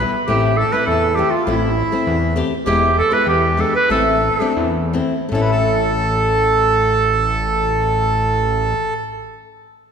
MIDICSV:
0, 0, Header, 1, 5, 480
1, 0, Start_track
1, 0, Tempo, 597015
1, 228, Time_signature, 2, 2, 24, 8
1, 2629, Tempo, 652174
1, 3589, Tempo, 746269
1, 4069, Tempo, 788436
1, 6869, End_track
2, 0, Start_track
2, 0, Title_t, "Accordion"
2, 0, Program_c, 0, 21
2, 0, Note_on_c, 0, 71, 81
2, 85, Note_off_c, 0, 71, 0
2, 236, Note_on_c, 0, 67, 66
2, 455, Note_off_c, 0, 67, 0
2, 475, Note_on_c, 0, 69, 68
2, 595, Note_off_c, 0, 69, 0
2, 596, Note_on_c, 0, 71, 70
2, 704, Note_off_c, 0, 71, 0
2, 716, Note_on_c, 0, 69, 74
2, 948, Note_on_c, 0, 67, 54
2, 959, Note_off_c, 0, 69, 0
2, 1071, Note_off_c, 0, 67, 0
2, 1081, Note_on_c, 0, 65, 59
2, 1197, Note_off_c, 0, 65, 0
2, 1201, Note_on_c, 0, 64, 67
2, 1880, Note_off_c, 0, 64, 0
2, 2161, Note_on_c, 0, 67, 70
2, 2390, Note_on_c, 0, 69, 76
2, 2401, Note_off_c, 0, 67, 0
2, 2479, Note_on_c, 0, 72, 57
2, 2482, Note_off_c, 0, 69, 0
2, 2507, Note_on_c, 0, 71, 76
2, 2508, Note_off_c, 0, 72, 0
2, 2617, Note_on_c, 0, 67, 70
2, 2633, Note_off_c, 0, 71, 0
2, 2966, Note_on_c, 0, 71, 66
2, 2979, Note_off_c, 0, 67, 0
2, 3083, Note_on_c, 0, 69, 67
2, 3092, Note_off_c, 0, 71, 0
2, 3556, Note_off_c, 0, 69, 0
2, 4072, Note_on_c, 0, 69, 79
2, 4121, Note_on_c, 0, 71, 63
2, 4124, Note_off_c, 0, 69, 0
2, 4182, Note_off_c, 0, 71, 0
2, 4186, Note_on_c, 0, 69, 90
2, 6271, Note_off_c, 0, 69, 0
2, 6869, End_track
3, 0, Start_track
3, 0, Title_t, "Clarinet"
3, 0, Program_c, 1, 71
3, 0, Note_on_c, 1, 71, 85
3, 104, Note_off_c, 1, 71, 0
3, 209, Note_on_c, 1, 67, 82
3, 458, Note_on_c, 1, 69, 85
3, 471, Note_off_c, 1, 67, 0
3, 580, Note_on_c, 1, 71, 86
3, 592, Note_off_c, 1, 69, 0
3, 688, Note_off_c, 1, 71, 0
3, 692, Note_on_c, 1, 69, 84
3, 927, Note_on_c, 1, 67, 84
3, 939, Note_off_c, 1, 69, 0
3, 1046, Note_on_c, 1, 65, 76
3, 1058, Note_off_c, 1, 67, 0
3, 1157, Note_off_c, 1, 65, 0
3, 1162, Note_on_c, 1, 64, 61
3, 1861, Note_off_c, 1, 64, 0
3, 2142, Note_on_c, 1, 67, 79
3, 2367, Note_off_c, 1, 67, 0
3, 2402, Note_on_c, 1, 69, 95
3, 2519, Note_on_c, 1, 71, 93
3, 2531, Note_off_c, 1, 69, 0
3, 2635, Note_off_c, 1, 71, 0
3, 2642, Note_on_c, 1, 67, 81
3, 2875, Note_on_c, 1, 69, 77
3, 2887, Note_off_c, 1, 67, 0
3, 2981, Note_off_c, 1, 69, 0
3, 2985, Note_on_c, 1, 71, 103
3, 3090, Note_off_c, 1, 71, 0
3, 3099, Note_on_c, 1, 69, 82
3, 3564, Note_off_c, 1, 69, 0
3, 4068, Note_on_c, 1, 69, 86
3, 6153, Note_off_c, 1, 69, 0
3, 6869, End_track
4, 0, Start_track
4, 0, Title_t, "Nylon-string guitar"
4, 0, Program_c, 2, 24
4, 0, Note_on_c, 2, 55, 57
4, 0, Note_on_c, 2, 59, 51
4, 2, Note_on_c, 2, 64, 57
4, 108, Note_off_c, 2, 55, 0
4, 112, Note_off_c, 2, 59, 0
4, 115, Note_off_c, 2, 64, 0
4, 222, Note_on_c, 2, 57, 78
4, 230, Note_on_c, 2, 60, 62
4, 238, Note_on_c, 2, 64, 66
4, 405, Note_off_c, 2, 57, 0
4, 409, Note_off_c, 2, 60, 0
4, 413, Note_off_c, 2, 64, 0
4, 581, Note_on_c, 2, 57, 56
4, 586, Note_on_c, 2, 60, 51
4, 594, Note_on_c, 2, 64, 58
4, 764, Note_off_c, 2, 57, 0
4, 767, Note_off_c, 2, 60, 0
4, 771, Note_off_c, 2, 64, 0
4, 942, Note_on_c, 2, 57, 59
4, 948, Note_on_c, 2, 60, 47
4, 955, Note_on_c, 2, 64, 59
4, 1065, Note_off_c, 2, 57, 0
4, 1067, Note_off_c, 2, 60, 0
4, 1071, Note_off_c, 2, 64, 0
4, 1180, Note_on_c, 2, 57, 72
4, 1185, Note_on_c, 2, 60, 62
4, 1193, Note_on_c, 2, 64, 74
4, 1363, Note_off_c, 2, 57, 0
4, 1366, Note_off_c, 2, 60, 0
4, 1370, Note_off_c, 2, 64, 0
4, 1544, Note_on_c, 2, 57, 54
4, 1548, Note_on_c, 2, 60, 60
4, 1553, Note_on_c, 2, 64, 58
4, 1724, Note_off_c, 2, 57, 0
4, 1726, Note_off_c, 2, 60, 0
4, 1729, Note_off_c, 2, 64, 0
4, 1896, Note_on_c, 2, 57, 80
4, 1902, Note_on_c, 2, 60, 71
4, 1906, Note_on_c, 2, 67, 90
4, 2020, Note_off_c, 2, 57, 0
4, 2023, Note_off_c, 2, 60, 0
4, 2026, Note_off_c, 2, 67, 0
4, 2138, Note_on_c, 2, 56, 79
4, 2144, Note_on_c, 2, 59, 65
4, 2148, Note_on_c, 2, 64, 84
4, 2322, Note_off_c, 2, 56, 0
4, 2324, Note_off_c, 2, 59, 0
4, 2327, Note_off_c, 2, 64, 0
4, 2495, Note_on_c, 2, 56, 55
4, 2501, Note_on_c, 2, 59, 51
4, 2505, Note_on_c, 2, 64, 64
4, 2681, Note_off_c, 2, 56, 0
4, 2683, Note_off_c, 2, 59, 0
4, 2685, Note_off_c, 2, 64, 0
4, 2852, Note_on_c, 2, 56, 55
4, 2861, Note_on_c, 2, 59, 54
4, 2861, Note_on_c, 2, 62, 61
4, 2972, Note_off_c, 2, 56, 0
4, 2975, Note_off_c, 2, 59, 0
4, 2976, Note_off_c, 2, 62, 0
4, 3093, Note_on_c, 2, 57, 74
4, 3096, Note_on_c, 2, 60, 69
4, 3103, Note_on_c, 2, 64, 91
4, 3274, Note_off_c, 2, 57, 0
4, 3276, Note_off_c, 2, 60, 0
4, 3279, Note_off_c, 2, 64, 0
4, 3462, Note_on_c, 2, 57, 57
4, 3470, Note_on_c, 2, 60, 53
4, 3473, Note_on_c, 2, 62, 66
4, 3647, Note_off_c, 2, 57, 0
4, 3651, Note_off_c, 2, 60, 0
4, 3652, Note_off_c, 2, 62, 0
4, 3820, Note_on_c, 2, 57, 70
4, 3823, Note_on_c, 2, 60, 64
4, 3828, Note_on_c, 2, 64, 69
4, 3944, Note_off_c, 2, 57, 0
4, 3944, Note_off_c, 2, 60, 0
4, 3947, Note_off_c, 2, 64, 0
4, 4047, Note_on_c, 2, 57, 69
4, 4067, Note_on_c, 2, 61, 68
4, 4086, Note_on_c, 2, 64, 75
4, 6133, Note_off_c, 2, 57, 0
4, 6152, Note_off_c, 2, 61, 0
4, 6171, Note_off_c, 2, 64, 0
4, 6869, End_track
5, 0, Start_track
5, 0, Title_t, "Analog synth bass"
5, 0, Program_c, 3, 38
5, 227, Note_on_c, 3, 33, 97
5, 515, Note_off_c, 3, 33, 0
5, 704, Note_on_c, 3, 40, 105
5, 993, Note_off_c, 3, 40, 0
5, 1183, Note_on_c, 3, 33, 98
5, 1472, Note_off_c, 3, 33, 0
5, 1663, Note_on_c, 3, 40, 105
5, 1951, Note_off_c, 3, 40, 0
5, 2140, Note_on_c, 3, 28, 96
5, 2432, Note_off_c, 3, 28, 0
5, 2627, Note_on_c, 3, 40, 101
5, 2906, Note_off_c, 3, 40, 0
5, 3090, Note_on_c, 3, 33, 92
5, 3389, Note_off_c, 3, 33, 0
5, 3583, Note_on_c, 3, 40, 105
5, 3873, Note_off_c, 3, 40, 0
5, 4068, Note_on_c, 3, 33, 101
5, 6153, Note_off_c, 3, 33, 0
5, 6869, End_track
0, 0, End_of_file